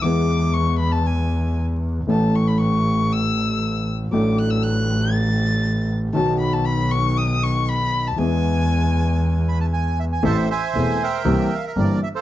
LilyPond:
<<
  \new Staff \with { instrumentName = "Violin" } { \time 4/4 \key e \mixolydian \tempo 4 = 118 d'''4 cis'''8 b''16 a''16 gis''4 r4 | a''8 cis'''16 b''16 cis'''4 e'''4. r8 | d'''8 fis'''16 e'''16 fis'''4 a'''4. r8 | a''8 b''16 a''16 b''8 cis'''8 dis'''8 cis'''8 b''8. a''16 |
gis''2. r4 | \key c \major r1 | }
  \new Staff \with { instrumentName = "Bandoneon" } { \time 4/4 \key e \mixolydian << { r1 | r1 | r1 | r1 |
r2 r8 b''16 a''16 gis''8 e''16 gis''16 | \key c \major a''8 gis''4 g''4 f''16 e''16 d''8 e''16 f''16 | } \\ { r1 | r1 | r1 | r1 |
r1 | <c'' e''>8 <c'' e''>4 <bes' e''>2 r16 <a' c''>16 | } >> }
  \new Staff \with { instrumentName = "Grand piano" } { \clef bass \time 4/4 \key e \mixolydian <e, e gis b gis'>1 | <a,, a, e a cis' a'>1 | <a,, a, fis a d' a'>1 | <b,, b, dis fis b fis'>1 |
<e, e gis b gis'>1 | \key c \major <a,, a, e a c' a'>8 r8 <e,, e, e a c' a'>8 r8 <c, c e bes c' g'>8 r8 <g,, g, e bes c' g'>8 r8 | }
  \new Staff \with { instrumentName = "Double bass" } { \clef bass \time 4/4 \key e \mixolydian e,1 | a,,1 | a,,1 | b,,1 |
e,1 | \key c \major a,,8 r8 e,,8 r8 c,8 r8 g,,8 r8 | }
>>